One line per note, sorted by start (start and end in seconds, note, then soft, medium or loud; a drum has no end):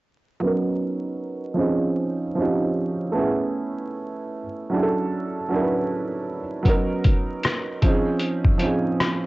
0.40 1.58 F#3 medium
0.40 1.59 B3 medium
0.40 1.56 C#4 medium
0.45 1.58 D#4 medium
0.45 1.61 A#4 loud
1.54 2.22 F3 medium
1.54 2.22 C4 medium
1.54 2.23 C#4 medium
1.59 2.24 D#4 medium
1.59 2.25 G#4 medium
2.35 3.14 F3 medium
2.35 3.15 C4 medium
2.35 3.14 C#4 medium
2.40 3.16 D#4 medium
2.40 3.17 G4 medium
3.12 4.39 A3 medium
3.12 4.40 B3 medium
3.12 4.41 C#4 medium
3.17 4.42 E4 medium
3.17 4.43 G#4 medium
4.70 5.35 F#3 medium
4.70 5.36 C#4 medium
4.70 5.37 D4 medium
4.74 5.38 E4 medium
4.74 4.81 G#4 medium
4.83 5.42 A4 medium
5.49 6.38 F#3 medium
5.49 6.38 C#4 medium
5.49 6.39 D4 medium
5.54 6.40 E4 medium
5.54 5.60 A#4 medium
5.62 6.44 B4 medium
6.63 7.81 F#3 medium
6.63 7.81 B3 medium
6.63 7.82 C#4 medium
6.63 kick medium
6.63 closed hi-hat medium
6.68 7.83 D#4 medium
6.68 7.84 A#4 loud
7.04 kick medium
7.04 closed hi-hat medium
7.43 cross-stick loud
7.43 closed hi-hat medium
7.82 8.47 F3 medium
7.82 8.48 C4 medium
7.82 8.49 C#4 medium
7.82 kick medium
7.82 closed hi-hat medium
7.87 8.50 D#4 medium
7.87 8.50 G#4 medium
8.19 closed hi-hat medium
8.45 kick medium
8.58 9.27 F3 medium
8.58 9.27 C4 medium
8.58 9.27 C#4 medium
8.58 closed hi-hat medium
8.63 9.27 D#4 medium
8.63 9.27 G#4 medium
9.00 cross-stick loud
9.00 closed hi-hat medium